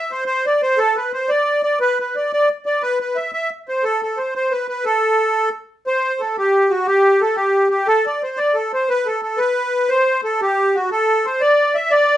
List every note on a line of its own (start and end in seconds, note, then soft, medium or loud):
0.00 0.11 E5 medium
0.11 0.24 C5 medium
0.26 0.46 C5 loud
0.46 0.61 D5 medium
0.62 0.79 C5 loud
0.78 0.97 A4 loud
0.96 1.12 B4 medium
1.13 1.30 C5 medium
1.29 1.62 D5 loud
1.63 1.79 D5 medium
1.80 1.99 B4 loud
2.00 2.16 B4 medium
2.16 2.32 D5 medium
2.33 2.49 D5 loud
2.66 2.82 D5 medium
2.82 2.99 B4 loud
3.00 3.17 B4 medium
3.16 3.31 E5 medium
3.33 3.50 E5 loud
3.69 3.84 C5 medium
3.84 4.01 A4 loud
4.03 4.19 A4 medium
4.17 4.34 C5 medium
4.35 4.53 C5 loud
4.51 4.67 B4 medium
4.68 4.85 B4 medium
4.85 5.49 A4 loud
5.87 6.21 C5 loud
6.20 6.37 A4 medium
6.38 6.72 G4 medium
6.70 6.87 F#4 medium
6.87 7.22 G4 loud
7.21 7.36 A4 medium
7.36 7.68 G4 medium
7.70 7.87 G4 medium
7.88 8.06 A4 loud
8.06 8.22 D5 medium
8.23 8.39 C5 medium
8.37 8.56 D5 loud
8.55 8.72 A4 medium
8.73 8.89 C5 medium
8.89 9.07 B4 loud
9.06 9.21 A4 medium
9.23 9.39 A4 medium
9.37 9.90 B4 loud
9.89 10.21 C5 loud
10.24 10.41 A4 medium
10.42 10.76 G4 loud
10.75 10.90 F#4 medium
10.91 11.26 A4 loud
11.25 11.42 C5 medium
11.41 11.76 D5 loud
11.75 11.92 E5 medium
11.91 12.17 D5 loud